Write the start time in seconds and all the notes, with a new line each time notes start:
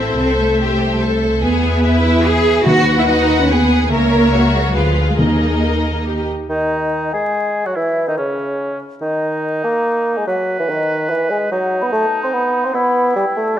Already playing: A1 C4 E4 A4 C5 E5
0.18 C2 C4 A4
0.40 A3
0.59 G4
1.00 A4
1.42 E2 B3 G#4 B4 E5
1.83 E4
2.04 E4
2.25 G#4
2.66 D#2 D#3 F#4 B4 F#5
2.99 E4
3.08 D#4
3.41 C#4
3.50 B3 G#4
3.91 C#2 A#3 A#4 C#5 E5
4.34 F#4
4.54 G#3
4.66 F#3
4.75 D2 F3 F4 G#4 B4 F5
5.09 G#3
5.19 D#2 D#3 A#3 D#4 A#4 D#5
6.06 G4
6.49 D#3 D#4 D#5
7.13 G#3 G#4 G#5
7.65 F#3 F#4 F#5
7.76 E3 E4 E5
8.07 D#3 D#4 D#5
8.17 C#3 C#4 C#5
9.01 D#3 D#4 D#5
9.64 A#3 A#5
10.16 G#3 G#5
10.27 F#3 B4 F#5
10.58 E3 E5
10.69 D#3 D#5
11.10 E3 E5
11.30 G#3 G#5
11.51 F#3 D#4 F#5
11.81 B3 B5
11.92 A3 A5
12.23 C4 C6
12.33 B3 B5
12.64 C4 C6
12.74 B3 E4 B5
13.16 G3 G5
13.36 A3 A5
13.57 G3